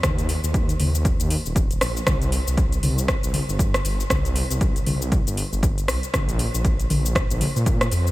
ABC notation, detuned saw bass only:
X:1
M:4/4
L:1/16
Q:"Swing 16ths" 1/4=118
K:Cm
V:1 name="Detuned saw bass" clef=bass
E,,2 z E,,2 z E,,2 z E,, z E,,,2 z B,,, z | C,,2 z C,,2 z C,,2 z C,, z G,,,2 z G,,, z | C,,2 z C,,2 z C,,2 z G,,, z G,,,3 C,, z | B,,,2 z B,,,2 z B,,,2 z B,,, z B,,2 z F,, z |]